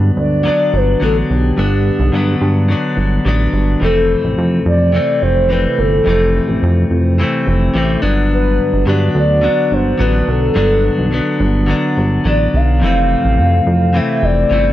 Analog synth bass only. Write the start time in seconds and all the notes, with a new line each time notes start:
Already playing: G2
0.17 D2
0.74 G1
1.02 A1
1.30 B1
1.58 G1
2.00 B1
2.13 G2
2.41 G2
2.97 G1
3.25 A1
3.53 G1
3.81 F1
4.24 A1
4.38 F2
4.66 F2
5.22 F1
5.79 G1
6.06 F1
6.48 A1
6.63 F2
6.91 F2
7.47 F1
7.75 A1
8.03 G1
8.73 G1
8.87 G2
9.15 D2
9.72 G1
10.00 A1
10.28 B1
10.56 G1
10.98 B1
11.40 G1
11.97 G1
12.25 A1
12.54 B1
12.82 F1
13.25 A1
13.39 F2
13.67 F2
14.23 F1
14.51 G1